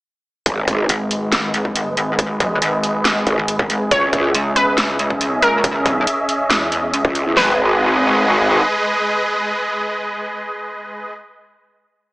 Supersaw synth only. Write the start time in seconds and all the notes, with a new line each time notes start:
0.46 G#3 G#4 B4 D#5
3.91 C#4 D#5 E5
7.37 G#3 G#4 B4 D#5